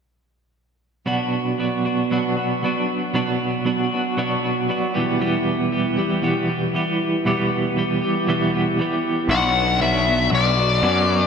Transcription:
1.06 clean electric guitar B2 F#3 B3 D4 F#4
1.58 clean electric guitar F#3 B3 D4 F#4
1.85 clean electric guitar B3 D4 F#4
2.11 clean electric guitar B2 F#3 B3 D4 F#4
2.37 clean electric guitar B3 D4 F#4
2.63 clean electric guitar F#3 B3 D4 F#4
3.14 clean electric guitar B2 F#3 B3 D4 F#4
3.65 clean electric guitar F#3 B3 D4 F#4
3.91 clean electric guitar B3 D4 F#4
4.17 clean electric guitar B2 F#3 B3 D4 F#4
4.43 clean electric guitar B3 D4 F#4
4.69 clean electric guitar F#3 B3 D4 F#4
4.94 clean electric guitar E2 B2 E3 G3 B3 G4
5.19 clean electric guitar E2 B2 E3 G3 B3 G4
5.71 clean electric guitar E3 G3 B3 G4
5.97 clean electric guitar E3 G3 B3 G4
6.22 clean electric guitar E2 B2 E3 G3 B3 G4
6.48 clean electric guitar E3 G3 B3 G4
6.74 clean electric guitar E3 G3 B3 G4
7.25 clean electric guitar E2 B2 E3 G3 B3 G4
7.76 clean electric guitar E3 G3 B3 G4
8.02 clean electric guitar E3 G3 B3 G4
8.27 clean electric guitar E2 B2 E3 G3 B3 G4
8.54 clean electric guitar E3 G3 B3 G4
8.79 clean electric guitar E3 G3 B3 G4
9.29 picked electric bass B1, clean electric guitar B2 F#3 B3 D4 F#4, lead electric guitar F#5
9.55 clean electric guitar B3 D4 F#4
9.81 clean electric guitar B2 F#3 B3 D4 F#4, lead electric guitar E5
10.07 clean electric guitar B3 D4 F#4
10.32 picked electric bass B1, lead electric guitar D5
10.57 clean electric guitar B3 D4 F#4
10.83 picked electric bass F#2, clean electric guitar F#3 B3 D4 F#4

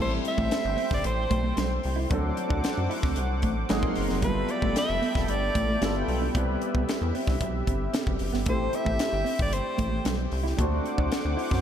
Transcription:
Already playing: grand piano G3
0.00 analog synth bass A1, grand piano A3 C4 E4 A4, analog synth pad C5 G5 C6, soprano saxophone C5
0.24 soprano saxophone E5, muted clean electric guitar stroke, closed hi-hat
0.37 analog synth bass A1, clean electric guitar A3, kick
0.51 snare, closed hi-hat
0.65 analog synth bass G1
0.77 clean electric guitar C4, open hi-hat
0.91 analog synth bass G1, soprano saxophone D5, kick, snare
1.04 analog synth bass A1, soprano saxophone C5, muted clean electric guitar stroke, closed hi-hat
1.30 analog synth bass B1, clean electric guitar A3, kick, closed hi-hat
1.43 clean electric guitar A3
1.56 analog synth bass B1, clean electric guitar G3, snare, closed hi-hat
1.70 muted clean electric guitar stroke
1.83 analog synth bass C2, open hi-hat
1.96 clean electric guitar E4
2.10 analog synth bass D2, grand piano F#3 A3 C4 D4 A4, clean electric guitar D4, analog synth pad C5 F#5 D6, kick, closed hi-hat
2.36 muted clean electric guitar stroke, closed hi-hat
2.49 analog synth bass D2, clean electric guitar D4, kick
2.63 muted clean electric guitar stroke, snare, closed hi-hat
2.78 analog synth bass F#2
2.90 clean electric guitar E4, open hi-hat
3.03 analog synth bass D2, clean electric guitar C4, kick, snare
3.16 analog synth bass C2, closed hi-hat
3.42 analog synth bass A1, clean electric guitar A3, kick, closed hi-hat
3.68 analog synth bass G#1, grand piano F#3 A#3 C4 D#4 G#4, clean electric guitar G#3, analog synth pad A#4 F#5 C6, snare, closed hi-hat
3.83 analog synth bass A#1, muted clean electric guitar stroke, kick
3.95 analog synth bass F#1, open hi-hat
4.09 analog synth bass F1, clean electric guitar C4, snare
4.22 analog synth bass G1, grand piano G3 B3 E4 F4 A4, clean electric guitar G3, analog synth pad A4 E5 G5 B5, soprano saxophone B4, kick, closed hi-hat
4.48 soprano saxophone D5, muted clean electric guitar stroke, closed hi-hat
4.62 analog synth bass G1, clean electric guitar A3, kick
4.76 soprano saxophone E5, snare, closed hi-hat
4.89 analog synth bass F1
5.02 clean electric guitar B3, open hi-hat
5.15 analog synth bass F1, kick, snare
5.24 soprano saxophone E5
5.28 analog synth bass G1, soprano saxophone D5, muted clean electric guitar stroke, closed hi-hat
5.55 analog synth bass A1, clean electric guitar A3, kick, closed hi-hat
5.68 clean electric guitar A3
5.81 analog synth bass G1, clean electric guitar G3, grand piano G3 B3 E4 F4 A4, analog synth pad A4 E5 G5, snare, closed hi-hat
5.95 muted clean electric guitar stroke
6.08 analog synth bass B1, open hi-hat
6.22 clean electric guitar D4
6.35 analog synth bass C2, grand piano G3 B3 C4 E4 B4, clean electric guitar C4, analog synth pad G4, kick, closed hi-hat
6.61 muted clean electric guitar stroke, closed hi-hat
6.75 analog synth bass C2, clean electric guitar B3, kick
6.88 muted clean electric guitar stroke, snare, closed hi-hat
7.01 analog synth bass E2
7.15 clean electric guitar C4, open hi-hat
7.27 analog synth bass C2, clean electric guitar D4, kick, snare
7.41 analog synth bass B1, kick, closed hi-hat
7.67 analog synth bass G1, clean electric guitar C4, kick, closed hi-hat
7.93 clean electric guitar C4, snare, closed hi-hat
8.07 analog synth bass F#1, muted clean electric guitar stroke, kick
8.19 analog synth bass F#1, open hi-hat
8.33 analog synth bass G1, clean electric guitar B3, snare
8.46 analog synth bass A1, clean electric guitar A3, grand piano A3 C4 E4 G4, soprano saxophone C5, analog synth pad G5, kick, closed hi-hat
8.50 grand piano C5
8.73 soprano saxophone E5, muted clean electric guitar stroke, closed hi-hat
8.85 analog synth bass A1, clean electric guitar A3, kick
8.99 snare, closed hi-hat
9.13 analog synth bass G1
9.24 clean electric guitar C4, open hi-hat
9.39 analog synth bass G1, soprano saxophone D5, kick
9.51 soprano saxophone C5, muted clean electric guitar stroke, closed hi-hat
9.78 analog synth bass A1, clean electric guitar A3, kick, closed hi-hat
9.91 clean electric guitar A3
10.04 analog synth bass B1, clean electric guitar G3, snare, closed hi-hat
10.18 muted clean electric guitar stroke
10.31 analog synth bass C2, open hi-hat
10.43 clean electric guitar E4, snare
10.57 analog synth bass D2, grand piano A3 C4 D4 F#4 C5, clean electric guitar D4, analog synth pad C5 F#5 D6, kick, closed hi-hat
10.84 muted clean electric guitar stroke, closed hi-hat
10.98 analog synth bass D2, clean electric guitar D4, kick
11.11 muted clean electric guitar stroke, snare, closed hi-hat
11.25 analog synth bass D2
11.37 clean electric guitar E4, open hi-hat
11.50 analog synth bass F#2, clean electric guitar C4, kick, snare

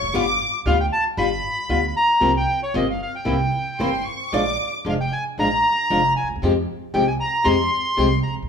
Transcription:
Already playing: hollow-body jazz guitar C#5, violin section C#6
0.02 upright bass F1
0.08 upright bass F#1
0.13 upright bass G1, nylon-string guitar G3 B3 F4, hollow-body jazz guitar F5, violin section D6
0.66 upright bass D2, nylon-string guitar G3 B3 F4, bandoneon F5
0.80 bandoneon G5
0.93 bandoneon A5
1.17 upright bass G1, nylon-string guitar G3 B3 F4, bandoneon B5
1.69 upright bass D2, nylon-string guitar G3 B3 F4
1.88 bandoneon B5
1.97 bandoneon A#5
2.20 upright bass C2, nylon-string guitar C3 F3 A#3 C4 F4
2.37 bandoneon G5
2.63 bandoneon C#5
2.74 upright bass G1, nylon-string guitar C3 F3 A#3 C4 F4, bandoneon D#5
2.90 bandoneon F5
3.02 bandoneon F5
3.15 bandoneon G5
3.25 upright bass C2, nylon-string guitar C3 E3 A#3 C4 E4
3.79 upright bass G1, nylon-string guitar C3 E3 A#3 C4 E4, hollow-body jazz guitar C5, violin section C6
4.05 violin section C#6
4.32 upright bass A#1, nylon-string guitar F3 G#3 D4 F4, hollow-body jazz guitar D5, violin section D6
4.85 upright bass F1, nylon-string guitar F3 G#3 D4 F4
4.89 bandoneon F5
5.01 bandoneon G5
5.13 bandoneon G#5
5.38 upright bass A#1, nylon-string guitar F3 G#3 D4 F4, bandoneon A#5
5.90 upright bass F1, nylon-string guitar F3 G#3 D4 F4
6.16 bandoneon G#5
6.23 upright bass D2
6.30 upright bass D#2
6.36 upright bass E2
6.42 upright bass F2, nylon-string guitar C3 F3 G#3 C4 G4
6.94 upright bass C2, nylon-string guitar C3 F3 G#3 C4 G4, bandoneon G5
7.07 bandoneon G#5
7.20 bandoneon A#5
7.44 upright bass F2, nylon-string guitar C3 F3 G#3 C4 G4, bandoneon C6
7.97 upright bass C2, nylon-string guitar C3 F3 G#3 C4 G4
8.23 bandoneon A#5
8.30 upright bass A1
8.37 upright bass A#1
8.43 upright bass B1

